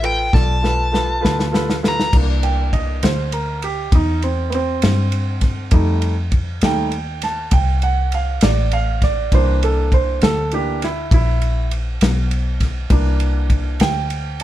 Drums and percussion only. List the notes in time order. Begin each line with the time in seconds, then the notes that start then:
0.04 ride
0.33 kick, snare
0.64 snare
0.94 snare
1.25 snare
1.39 snare
1.54 snare
1.70 snare
1.84 snare
2.00 snare
2.13 kick, crash
2.43 ride
2.73 kick, ride
3.03 snare, ride
3.32 ride
3.62 ride
3.92 kick, ride
4.22 ride
4.52 ride
4.82 snare, ride
5.12 ride
5.41 kick, snare, ride
5.71 kick, ride
6.02 ride
6.32 kick, ride
6.61 snare, ride
6.92 ride
7.22 snare, ride
7.51 kick, ride
7.82 ride
8.12 ride
8.41 snare, ride
8.71 ride
9.02 kick, snare, ride
9.32 kick, ride
9.63 ride
9.92 kick, ride
10.22 snare, ride
10.52 ride
10.82 snare, ride
11.11 kick, ride
11.42 ride
11.71 ride
12.01 snare, ride
12.31 ride
12.60 kick, snare, ride
12.90 kick, ride
13.20 ride
13.50 kick, ride
13.80 snare, ride
14.10 ride
14.40 ride